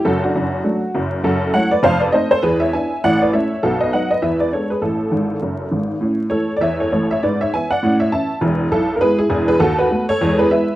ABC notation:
X:1
M:4/4
L:1/16
Q:"Swing" 1/4=201
K:D
V:1 name="Honky-tonk piano"
[FA]2 [DF]12 z2 | [K:A] [FA]4 [cf]2 [Bd]2 [=c=f]2 [Bd]2 [c_e]2 [Ac]2 | [GB]2 [ce]2 [eg]4 [df]2 [Bd]2 [ce]4 | [FA]2 [B^d]2 [df]2 [Bd]2 [Be]2 [B=d]2 [Ac]2 [GB]2 |
[EA]12- [EA]2 z2 | z4 [Ac]3 d [ce]2 [Ac]2 [Ac]2 [ce]2 | [Bd]2 [ce]2 [eg]2 [df]4 [ce]2 [ea]4 | z4 [EA]3 _B [G=B]2 [EG]2 [EG]2 [GB]2 |
[FA]2 [FB]4 [Ac]4 [GB]2 [Be]4 |]
V:2 name="Honky-tonk piano" clef=bass
[F,,,F,,]4 [F,,,F,,]4 [F,A,D]4 [F,,,F,,]4 | [K:A] [F,,,F,,]4 [F,A,E]4 [=F,,,=F,,]4 [A,=C_E]4 | [E,,E,]4 [B,DE]4 [A,,,A,,]4 [A,CE]4 | [B,,,B,,]4 [F,B,^D]4 [E,,E,]4 [G,B,=D]4 |
[A,,,A,,]4 [G,,,G,,]4 [F,,,F,,]4 [G,,,G,,]4 | [A,,C]4 [E,A,E]4 E,,4 [A,,,A,,]4 | G,,4 [E,B,E]4 [A,,C]4 [E,CE]4 | [E,,,E,,]4 B,,,4 [G,B,E]4 [E,,,E,,]4 |
^D,,4 [A,B,F]4 [E,,G,]4 [G,B,E]4 |]